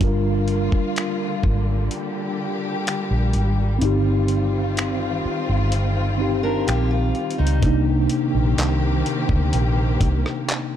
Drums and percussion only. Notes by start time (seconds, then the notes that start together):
0.01 kick, closed hi-hat
0.48 closed hi-hat
0.72 kick
0.96 finger snap, closed hi-hat
1.43 kick
1.91 closed hi-hat
2.87 finger snap, closed hi-hat
3.33 closed hi-hat
3.81 closed hi-hat
4.28 closed hi-hat
4.77 finger snap, closed hi-hat
5.72 closed hi-hat
6.68 finger snap, closed hi-hat
7.15 closed hi-hat
7.31 closed hi-hat
7.47 closed hi-hat
7.63 kick, closed hi-hat
8.09 closed hi-hat
8.58 clap, closed hi-hat
9.06 closed hi-hat
9.29 kick
9.53 closed hi-hat
10.01 kick, closed hi-hat
10.26 cross-stick
10.49 clap, closed hi-hat